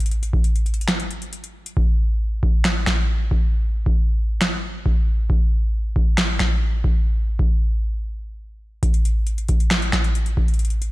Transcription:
0.00 closed hi-hat
0.06 closed hi-hat
0.11 closed hi-hat
0.23 closed hi-hat
0.33 kick
0.44 closed hi-hat
0.56 closed hi-hat
0.66 closed hi-hat, open hi-hat
0.74 closed hi-hat
0.81 closed hi-hat
0.88 finger snap, snare, closed hi-hat
1.00 closed hi-hat
1.11 closed hi-hat
1.22 closed hi-hat
1.33 closed hi-hat
1.44 closed hi-hat
1.66 closed hi-hat
1.77 kick
2.43 kick
2.64 finger snap, snare
2.86 finger snap, kick, snare
3.31 kick
3.86 kick
4.41 finger snap, snare
4.86 kick
5.30 kick
5.96 kick
6.17 finger snap, snare
6.39 finger snap, kick, snare
6.84 kick
7.39 kick
8.83 kick, closed hi-hat
8.94 closed hi-hat
9.05 closed hi-hat
9.27 closed hi-hat
9.38 closed hi-hat
9.48 kick, closed hi-hat
9.60 closed hi-hat
9.70 finger snap, snare, closed hi-hat
9.82 closed hi-hat
9.92 finger snap, kick, snare, closed hi-hat
10.04 closed hi-hat
10.15 closed hi-hat
10.26 closed hi-hat
10.37 kick
10.48 closed hi-hat
10.54 closed hi-hat
10.59 closed hi-hat
10.65 closed hi-hat
10.70 closed hi-hat
10.82 closed hi-hat

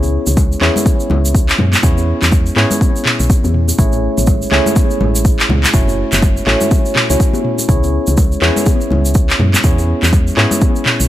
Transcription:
Already playing: C#2 B3 C#4 E4 G#4 C#5
0.03 muted conga, shaker
0.27 C#2, muted conga, high conga, shaker
0.37 kick, low conga, shaker
0.52 shaker
0.61 E2 B3 C#4 E4 G#4 C#5, clap, muted conga
0.76 low conga, shaker
0.86 kick, muted conga, high conga, shaker
1.00 shaker
1.10 C#2, muted conga, low conga
1.25 shaker
1.35 kick, muted conga, shaker
1.49 clap, shaker
1.58 F#2, mid tom, high conga, low conga
1.73 clap, muted conga, shaker
1.83 E2 B3 C#4 E4 G#4 C#5, kick, mid tom, shaker
1.98 muted conga, shaker
2.22 E2, clap, muted conga, high conga, shaker
2.32 kick, low conga, shaker
2.46 shaker
2.56 G#2 B3 C#4 E4 G#4 C#5, clap, muted conga
2.71 low conga, shaker
2.81 kick, muted conga, high conga, shaker
2.96 shaker
3.05 clap, mid tom, muted conga
3.20 B1, shaker
3.30 kick, muted conga, high conga, shaker
3.44 E2, high conga, shaker
3.54 mid tom
3.68 muted conga, shaker
3.78 A1 A3 C#4 E4 G#4 C#5, kick, mid tom, shaker
3.92 muted conga, shaker
4.17 A1, muted conga, high conga, shaker
4.27 kick, low conga, shaker
4.42 shaker
4.51 C#2 A3 C#4 E4 G#4 C#5, clap, muted conga
4.66 low conga, shaker
4.76 kick, muted conga, high conga, shaker
4.91 shaker
5.00 A1, muted conga, low conga
5.15 shaker
5.25 kick, muted conga, shaker
5.40 clap, shaker
5.49 C#2, mid tom, high conga, low conga
5.64 clap, muted conga, shaker
5.74 F#1 A3 C#4 E4 F#4 C#5, kick, mid tom, shaker
5.88 muted conga, shaker
6.12 F#1, clap, muted conga, high conga, shaker
6.22 kick, low conga, shaker
6.37 shaker
6.46 A1 A3 C#4 E4 F#4 C#5, clap, muted conga
6.61 low conga, shaker
6.71 kick, muted conga, high conga, shaker
6.85 shaker
6.95 clap, mid tom, muted conga
7.10 C#2 A3 C#4 E4 F#4 C#5, shaker
7.19 kick, muted conga, high conga, shaker
7.33 high conga, shaker
7.45 mid tom
7.59 muted conga, shaker
7.69 C#2 B3 C#4 E4 G#4 C#5, kick, mid tom, shaker
7.83 muted conga, shaker
8.07 C#2, muted conga, high conga, shaker
8.17 kick, low conga, shaker
8.32 shaker
8.42 E2 B3 C#4 E4 G#4 C#5, clap, muted conga
8.56 low conga, shaker
8.66 kick, muted conga, high conga, shaker
8.81 shaker
8.90 C#2, muted conga, low conga
9.05 shaker
9.14 kick, muted conga, shaker
9.30 clap, shaker
9.40 F#2, mid tom, high conga, low conga
9.54 clap, muted conga, shaker
9.64 E2 B3 C#4 E4 G#4 C#5, kick, mid tom, shaker
9.78 muted conga, shaker
10.02 E2, clap, muted conga, high conga, shaker
10.13 kick, low conga, shaker
10.27 shaker
10.37 G#2 B3 C#4 E4 G#4 C#5, clap, muted conga
10.51 low conga, shaker
10.61 kick, muted conga, high conga, shaker
10.76 shaker
10.86 clap, mid tom, muted conga
11.00 B1, shaker

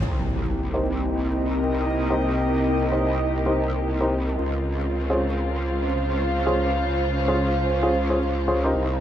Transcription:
0.02 C2 C3 A#3 C4 D#4 G4, impact
0.59 A#4
0.68 D#5
0.74 D#4 G4 A#4 C5
2.10 D#4 G4 A#4 C5
2.92 D#4 G4 A#4 C5
3.46 D#4 G4 A#4 C5
4.00 D#4 G4 A#4 C5
4.38 C#2 C#3 G#3 C4 F4
4.93 C5 F5
5.10 C#4 F4 G#4 C5
6.46 C#4 F4 G#4 C5
6.57 C#4
7.28 C#4 F4 G#4 C5
7.83 C#4 F4 G#4 C5
8.10 C#4 F4 G#4 C5
8.48 C#4 F4 G#4 C5
8.64 D#4 G4 A#4 C5
8.74 C2 C3 G3 A#3 C4 D#4
8.94 A#4

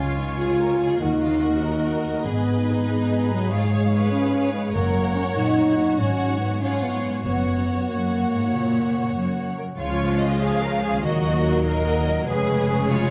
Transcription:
Already playing: C#2 C#3 C#4 F4 C#5 G#5
0.00 G#3
0.18 D#4 C#5
0.39 F4 G#4
0.61 A#4 F5
0.80 G#4
1.01 D#2 D#3 D#4 F#4 A#4 D#5
1.22 D#4 F4
1.43 F#4 A#4
1.64 D#4 A#4 D#5
1.86 F#5
2.07 D#5
2.26 G#1 G#2 B3 G#4 B4
2.48 D#4 B4
2.69 D#4 B4
2.89 B3 D#5
3.11 G#5
3.31 F#3 D#5
3.51 G#2 G#3 F4 C#5 F5
3.72 C#4 C#5
3.93 B4 C#5
4.12 C#4 F4
4.35 F5
4.54 G#3 C#5
4.75 F#1 F#2 A#3 A#4 C#5 F#5
4.96 C#4
5.15 C#4 C#5
5.36 A#2 F#3 D#4 F#4
5.58 A#5
5.79 C#5
5.99 G#1 G#2 C#4 C#5 F#5
6.21 C#4
6.40 B3 C#5
6.61 C#4 F4 G#4 C#5 F#5
6.82 B3 G#5
7.04 C#5
7.25 F#1 F#2 B3 F#4 C#5 F#5
7.46 C#4
7.67 C#5
7.88 F#2 A#3 F#4 C#5 F#5
8.09 F#5
8.31 G#2 C#5
8.52 A#2 C#3
8.72 C#4
8.94 C#5
9.15 F#2 F#4
9.36 F#5
9.57 A#4 C#5
9.77 C#2 C#3 F3 G#3 C#4 F4 C#5
9.99 C#4
10.19 C#5 D#5
10.40 G#4 F5
10.62 A#4 G#5
10.83 G#4 C#5
11.03 D#2 A#2 D#3 F#3 A#3 D#4 F#4 A#4 D#5
11.25 D#4
11.45 A#4
11.66 A#4 D#5
11.87 F#5
12.08 D#5
12.26 F1 F2 C#3 G#3 C#4 G#4 B4
12.49 C#4
12.69 C#5
12.88 F4 G#4 C#5

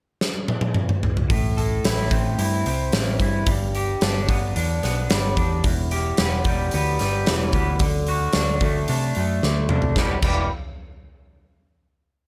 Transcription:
0.21 snare
0.48 high tom
0.61 high tom
0.74 mid tom
0.89 mid tom
1.03 floor tom
1.17 floor tom
1.30 A1 A2, kick, open hi-hat
1.57 A4, open hi-hat
1.84 A1 E4, snare, open hi-hat
2.11 A1 C4, kick, open hi-hat
2.39 G2 E4, open hi-hat
2.66 C2 C4, open hi-hat
2.92 A1 E3, snare, open hi-hat
3.20 G2 E4, kick, open hi-hat
3.46 G1 G2, kick, open hi-hat
3.75 G4, open hi-hat
4.01 G1 D4, snare, open hi-hat
4.28 G1 B3, kick, open hi-hat
4.56 E2 D4, open hi-hat
4.83 B1 B3, snare, open hi-hat
5.10 G1 G3, snare, open hi-hat
5.37 E2 D4, kick, open hi-hat
5.64 E1 E2, kick, open hi-hat
5.91 G4, open hi-hat
6.17 E1 B3, snare, open hi-hat
6.44 E1 G3, kick, open hi-hat
6.71 D2 B3, open hi-hat
6.99 G1 G3, snare, open hi-hat
7.26 E1 E3, snare, open hi-hat
7.53 D2 B3, kick, open hi-hat
7.79 D2 D3, kick, open hi-hat
8.07 F#4, open hi-hat
8.33 D2 D4, snare, open hi-hat
8.60 D2 A3, kick, open hi-hat
8.88 C3 D4, open hi-hat
9.15 F#2 A3, open hi-hat
9.43 D2 D3, snare
9.69 C3 D4, mid tom
9.82 floor tom
9.96 E1 E2 B2 E3 G3 B3 G4, kick, snare
10.22 E1 E2 B2 E3 G3 B3 G4, kick, crash

